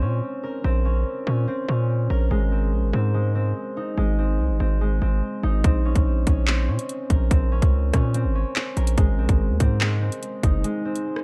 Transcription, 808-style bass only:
0.02 A#2
0.64 A#1
1.27 A#2
1.68 A#2
2.10 A#1
2.31 G#1
2.73 A#1
2.83 G#1
2.93 G#2
3.98 G#1
4.39 C2
4.50 G#1
4.60 G#1
5.02 G#1
5.43 G#1
5.64 A#1
5.96 A#1
6.27 A#1
6.68 A#2
7.10 A#1
7.31 A#1
7.62 C#2
7.94 A#2
8.25 G#1
8.77 A#1
8.98 G#1
9.18 A#1
9.29 G#1
9.50 D#2
9.60 G#2
10.43 F#1

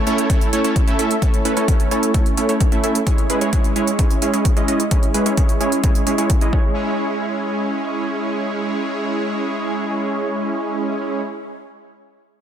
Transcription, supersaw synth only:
0.07 A3 C#4 E4 A4 C#5
0.30 A3 C#4 E4 A4 C#5
0.53 A3 C#4 E4 A4 C#5
0.64 A3 C#4 E4 A4 C#5
0.87 A3 C#4 E4 A4 E5
0.99 A3 C#4 E4 A4 E5
1.22 A3 C#4 E4 A4 C#5
1.45 A3 C#4 E4 A4 B4
1.57 A3 C#4 E4 A4 C#5
1.68 C#5
1.91 A3 C#4 E4 A4 C#5
2.14 C#4 E4 A4 C#5
2.38 A3 C#4 E4 A4 C#5
2.49 A3 C#4 E4 A4 C#5
2.72 A3 C#4 E4 A4 E5
2.84 A3 C#4 E4 A4 E5
3.07 G#3 C#4 E4 G#4 C#5
3.30 G#3 C#4 E4 G#4 B4
3.41 G#3 C#4 E4 G#4 C#5
3.53 G#3 C#4 E4 G#4 C#5
3.76 G#3 C#4 E4 G#4 C#5
3.99 G#3 C#4 E4 G#4 C#5
4.22 G#3 C#4 E4 G#4 C#5
4.34 G#3 C#4 E4 G#4 C#5
4.57 G#3 C#4 E4 G#4 D#5
4.68 G#3 C#4 E4 G#4 D#5
4.91 G#3 C#4 E4 G#4 C#5
5.14 G#3 C#4 E4 G#4 B4
5.26 G#3 C#4 E4 G#4 C#5
5.37 G#3 C#4 E4 G#4 C#5
5.60 G#3 C#4 E4 G#4 C#5
5.83 G#3 C#4 E4 G#4 C#5
6.07 G#3 C#4 E4 G#4 C#5
6.18 G#3 C#4 E4 G#4 C#5
6.41 G#3 C#4 E4 G#4 D#5
6.53 G#3 C#4 E4 G#4 C#5

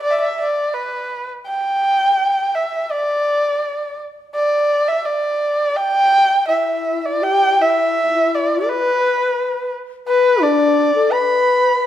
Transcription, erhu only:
0.02 D5
0.10 D5 E5
0.21 E5
0.40 D5
0.74 B4
1.46 G5
2.55 E5
2.91 D5
4.35 D5
4.88 E5
5.05 D5
5.77 G5
6.48 E5
7.05 D5
7.24 G5
7.61 E5
8.35 D5
8.61 D5
8.69 B4
10.08 B4
10.43 D5
11.12 B5

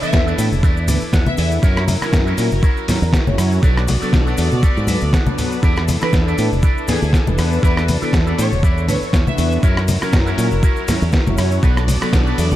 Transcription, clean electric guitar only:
0.01 E4 A4 B4 D5
0.26 E4 A4 B4 D5
0.63 E4 A4 B4 D5
0.88 D5
1.13 F#5
1.37 G#5, muted clean electric guitar stroke
1.62 E4 F#4 A#4 C#5
2.01 E4 F#4 A#4 C#5
2.26 E4 F#4 A#4 C#5
2.62 E4 F#4 A#4 C#5
3.37 muted clean electric guitar stroke
3.62 F#4 A4 B4 D5
4.01 F#4 A4 B4 D5
4.26 F#4 A4 B4 D5
4.38 D5
4.62 F#4 A4 B4 D5 F#5
4.88 E5
5.14 F#5
5.37 muted clean electric guitar stroke
5.62 E4 A4 B4 D5
6.01 E4 A4 B4 D5
6.26 E4 A4 B4 D5
6.62 E4 A4 B4 D5
7.37 muted clean electric guitar stroke
7.62 E4 A4 B4 D5
8.02 E4 A4 B4 D5
8.26 E4 A4 B4 D5
8.63 E4 A4 B4 D5
8.89 E5
9.14 C#5
9.38 muted clean electric guitar stroke
9.62 E4 F#4 A#4 C#5
10.01 E4 F#4 A#4 C#5
10.26 E4 F#4 A#4 C#5
10.62 E4 F#4 A#4 C#5
11.37 muted clean electric guitar stroke
11.62 D4 F#4 A4 B4
12.01 D4 F#4 A4 B4
12.26 D4 F#4 A4 B4

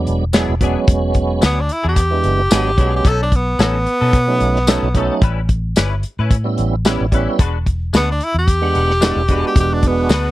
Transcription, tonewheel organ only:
Already playing: F#3 G#3 B3 D4
0.33 F#3 G#3 B3 E4
0.61 F#3 G#3 B3 C#4
2.11 E3 G#3 B3 D4
2.50 F#3 G#3 B3 D4
2.77 F#3 G#3 B3 C#4
4.27 F#3 A3 C#4 D#4
4.67 F#3 A3 C#4 D#4
4.94 F#3 A3 C#4 D#4
6.44 G3 B3 C#4 E4
6.85 G3 B3 C#4 E4
7.12 G3 B3 C#4 E4
8.62 G#3 B3 D4 F#5
9.01 G#3 B3 D4 E4
9.28 G#3 B3 D4 F#4

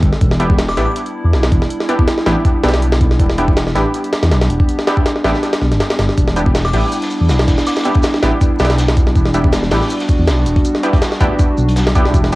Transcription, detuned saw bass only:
0.03 G1
0.21 E1
0.77 A1
1.24 E2
1.33 B1
1.52 E1
2.26 A1
2.64 B1
3.20 E1
3.75 A1
4.23 E2
4.31 B1
4.50 E1
5.24 A1
5.62 B1
5.72 G1
5.99 G1
6.18 E1
6.73 A1
7.21 E2
7.29 B1
7.48 E1
8.23 A1
8.60 B1
9.16 E1
9.72 A1
10.19 E2
10.28 B1
10.46 E1
11.21 A1
11.58 B1
12.14 E1

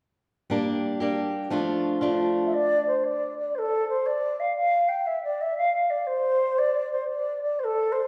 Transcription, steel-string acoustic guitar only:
0.50 G3 A#3 D4 G4
1.00 G3 A#3 D4 G4
1.50 F3 A3 D4 F4
2.01 F3 A3 D4 F4

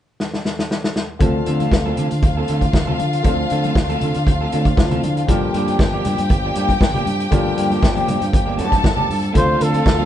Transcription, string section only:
1.20 F4 F5
5.28 G4 G5
8.60 A4 A5
9.34 F4 F5

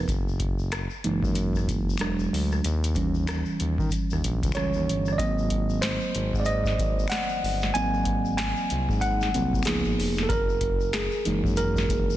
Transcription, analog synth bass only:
0.09 F#1
1.05 F#1
1.23 F#2
1.69 F#1
2.01 E1
2.33 D2
2.65 D#2
3.61 D#2
3.79 D#3
4.12 D#2
4.24 A#1
4.44 C#2
4.75 D#2
4.88 G1
5.19 G#1
6.15 G#1
6.34 G#2
6.79 G#1
7.44 G1
7.75 G#1
8.71 C2
8.89 G#2
9.35 C2
9.67 C#2
9.86 G#1
9.99 F1
10.30 F#1
11.26 F#1
11.45 F#2
11.90 F#1

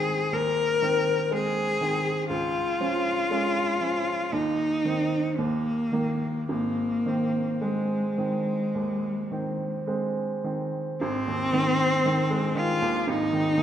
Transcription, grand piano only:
Already playing: G#1 D#3 G#3 C4
0.32 D#2
0.82 D#3 C4
1.31 G#3 C4
1.81 D#3 C4
2.30 C#2
2.80 F3 C#4
3.31 G#3 C#4
3.81 F3 C#4
4.32 D#2
4.85 D#3 C4
5.38 D#2
5.92 D#3 A#3
6.49 G#1
7.06 D#3 C4
7.61 G#3 C4
8.18 D#3 C4
8.75 D#2
9.32 D#3 C4
9.87 G#3 C4
10.44 D#3 C4
11.01 G#1
11.27 D#2
11.53 D#3
11.79 C4
12.05 D#3
12.31 G#3
12.55 D#3
12.82 D#2
13.07 G#1
13.33 D#3
13.57 D#2

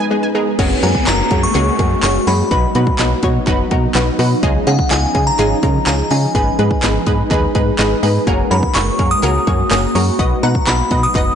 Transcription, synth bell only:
0.83 G#5
1.07 A#5
1.43 C#6
2.03 C#6
2.27 B5
4.67 F#5
4.91 G#5
5.27 A#5
5.87 A#5
6.11 G#5
8.51 B5
8.75 C#6
9.11 D#6
9.71 D#6
9.95 C#6
10.43 A#5
10.67 B5
11.03 D#6

